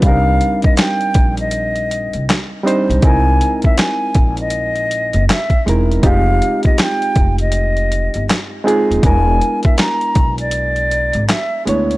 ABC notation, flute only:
X:1
M:4/4
L:1/16
Q:"Swing 16ths" 1/4=80
K:Cm
V:1 name="Flute"
f3 e g3 e4- e z4 | ^g3 =e g3 ^d4- d e2 z2 | f3 e g3 e4- e z4 | ^g3 =e ^a3 d4- d e2 z2 |]